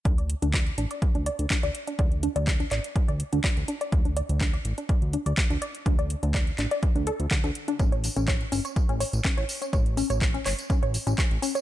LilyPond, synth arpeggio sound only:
\new Staff \with { instrumentName = "Synth arpeggio sound" } { \time 4/4 \key a \mixolydian \tempo 4 = 124 d'16 d''16 r16 d'16 d''16 r16 d'16 d''16 r16 d'16 d''16 r16 d'16 d''16 r16 d'16 | d''16 r16 d'16 d''16 r16 d'16 d''16 r16 d'16 d''16 r16 d'16 d''16 r16 d'16 d''16 | r16 d'16 d''16 r16 d'16 d''16 r16 d'16 d''16 r16 d'16 d''16 r16 d'16 d''16 r16 | d'16 d''16 r16 d'16 d''16 r16 d'16 d''16 r16 d'16 a'16 r16 d16 d'16 r16 d'16 |
cis'16 cis''16 r16 cis'16 cis''16 r16 cis'16 cis''16 r16 cis'16 cis''16 r16 cis'16 cis''16 r16 cis'16 | cis''16 r16 cis'16 cis''16 r16 cis'16 cis''16 r16 cis'16 cis''16 r16 cis'16 cis''16 r16 cis'16 cis''16 | }